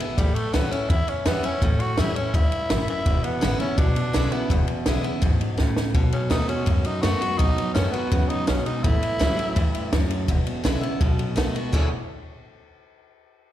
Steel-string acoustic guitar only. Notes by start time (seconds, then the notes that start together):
Already playing: B2
0.00 B3 E4
0.18 A2
0.53 E3 G3 C#4 E4
0.71 C#4 E4
0.90 E2
1.25 E3 G3 C#4 E4
1.43 C#4 E4
1.62 A2
1.98 E3 G3 C#4 E4
2.16 C#4 E4
2.35 G2
2.70 F#2
3.06 E2
3.41 D3 G#3 B3 E4
3.60 B3 E4
3.78 B2
4.13 D3 G#3 B3 E4
4.32 B3 E4
4.51 E2
4.86 D3 G#3 B3 E4
5.04 B3 E4
5.22 G#2
5.58 A2
5.95 B2
6.30 D#3 A3 B3 F#4
6.48 B3 F#4
6.66 F#2
7.03 D#3 A3 B3 F#4
7.21 B3 F#4
7.39 B2
7.75 D#3 A3 B3 F#4
7.93 B3 F#4
8.12 C#3
8.47 B2
8.84 A2
9.19 E3 G3 C#4 E4
9.37 C#4 E4
9.56 G2
9.93 F#2
10.29 E2
10.64 D3 G#3 B3 E4
10.81 B3 E4
11.01 B2
11.36 D#3 A3 B3 F#4
11.55 B3 F#4
11.72 E2 B2 D3 G#3 B3 E4